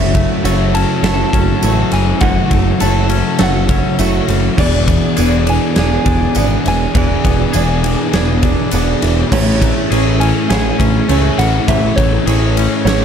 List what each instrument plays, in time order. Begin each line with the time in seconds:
Already playing: picked electric bass F#1, distorted electric guitar F#2 C#3 F#3, clean electric guitar E3 F#3 A3 E4 F#4 C#5, soft synth lead E5
0.14 distorted electric guitar C#3 F#3, clean electric guitar A3, kick, ride
0.42 picked electric bass F#1, distorted electric guitar F#2 C#3 F#3, clean electric guitar A3 E4 F#4 A4 C#5, ride, tambourine
0.73 distorted electric guitar C#3 F#3, clean electric guitar C#4, soft synth lead A5, ride
1.03 picked electric bass F#1, clean electric guitar F#3 A3 E4 F#4 A4 C#5, soft synth lead A5, snare, ride
1.32 picked electric bass F#1, clean electric guitar C#4 E4 F#4 C#5, kick, ride
1.62 picked electric bass A1, distorted electric guitar F#2 C#3 F#3, clean electric guitar A3 E4 F#4 C#5, ride, tambourine
1.91 picked electric bass F#1, distorted electric guitar C#3 F#3, clean electric guitar E3, soft synth lead G#5, snare, ride
2.20 picked electric bass F#1, distorted electric guitar F#2 C#3 F#3, clean electric guitar E3 F#3 A3 E4 F#4, soft synth lead F#5, kick, ride
2.24 clean electric guitar C#5
2.50 picked electric bass F#1, distorted electric guitar C#3 F#3, clean electric guitar A3, kick, ride
2.80 picked electric bass F#1, distorted electric guitar F#2 C#3 F#3, clean electric guitar A3 E4 F#4 A4 C#5, soft synth lead A5, ride, tambourine
3.10 distorted electric guitar C#3 F#3, clean electric guitar C#4, ride
3.39 picked electric bass F#1, clean electric guitar F#3 A3 E4 F#4 A4 C#5, snare, ride
3.43 soft synth lead F#5
3.68 clean electric guitar C#4 E4 F#4 C#5, kick, ride
3.98 picked electric bass F#1, distorted electric guitar F#2 C#3 F#3, clean electric guitar A3 E4 F#4 C#5, ride, tambourine
4.28 picked electric bass F#1, distorted electric guitar C#3 F#3, clean electric guitar E3, snare, ride
4.57 picked electric bass E1, distorted electric guitar E2 B2 E3, clean electric guitar E3 B3 D4 G#4 D5, soft synth lead D5, kick, crash
4.87 distorted electric guitar B2 E3, clean electric guitar B3, kick, ride
5.16 picked electric bass E1, distorted electric guitar E2 B2, clean electric guitar B3 D4 G#4 D5, ride, tambourine
5.21 distorted electric guitar E3
5.46 distorted electric guitar B2 E3, clean electric guitar D4, soft synth lead G#5, ride
5.76 picked electric bass E1, clean electric guitar E3 B3 D4 G#4 D5, soft synth lead G#5, snare, ride
6.06 picked electric bass E1, clean electric guitar D4 G#4 D5, kick, ride
6.35 picked electric bass G#1, distorted electric guitar E2 B2, clean electric guitar B3 D4 G#4 D5, ride, tambourine
6.39 distorted electric guitar E3
6.64 picked electric bass E1, clean electric guitar E3, distorted electric guitar E3, soft synth lead G#5, snare, ride
6.69 distorted electric guitar B2
6.94 picked electric bass E1, distorted electric guitar E2 B2 E3, clean electric guitar E3 B3 D4 G#4 D5, kick, ride
7.24 picked electric bass E1, distorted electric guitar B2 E3, clean electric guitar B3, kick, ride
7.52 picked electric bass E1, distorted electric guitar E2 B2, clean electric guitar B3 D4 G#4, ride, tambourine
7.57 distorted electric guitar E3, clean electric guitar D5
7.82 distorted electric guitar B2 E3, clean electric guitar D4, ride
8.13 picked electric bass E1, clean electric guitar E3 B3 D4 G#4 D5, snare, ride
8.42 clean electric guitar D4 G#4 D5, kick, ride
8.46 clean electric guitar D4
8.71 picked electric bass E1, distorted electric guitar E2 B2 E3, clean electric guitar B3 D4 G#4, ride, tambourine
8.76 clean electric guitar D5
9.01 picked electric bass E1, distorted electric guitar B2 E3, clean electric guitar E3, snare, ride
9.32 picked electric bass A1, distorted electric guitar A2 E3 A3, clean electric guitar E3 A3 C#4 E4 G#4 C#5, soft synth lead C#5, kick, crash
9.60 distorted electric guitar E3 A3, clean electric guitar A3, kick, ride
9.90 picked electric bass A1, distorted electric guitar A2 E3 A3, clean electric guitar C#4 E4 G#4 C#5, ride
10.19 distorted electric guitar E3 A3, clean electric guitar C#4, soft synth lead G#5, ride
10.48 picked electric bass A1, clean electric guitar A3 C#4 E4 G#4 C#5, soft synth lead G#5, snare, ride
10.78 picked electric bass A1, clean electric guitar C#4 E4 G#4 C#5, kick, ride
11.09 picked electric bass C#2, distorted electric guitar A2 E3 A3, clean electric guitar A3 C#4 E4 G#4 C#5, ride
11.38 picked electric bass A1, clean electric guitar E3, distorted electric guitar E3 A3, soft synth lead F#5, snare, ride
11.68 picked electric bass A1, distorted electric guitar A2 E3 A3, clean electric guitar E3 A3 C#4 E4 G#4 C#5, soft synth lead E5, kick, ride
11.96 picked electric bass A1, clean electric guitar A3, distorted electric guitar A3, soft synth lead C#5, kick, ride
12.01 distorted electric guitar E3
12.26 picked electric bass A1, distorted electric guitar A2 E3, clean electric guitar C#4 E4 G#4 C#5, ride
12.31 distorted electric guitar A3
12.57 distorted electric guitar E3 A3, clean electric guitar C#4, ride
12.85 picked electric bass A1, clean electric guitar A3 C#4 E4 G#4 C#5, soft synth lead C#5, snare, ride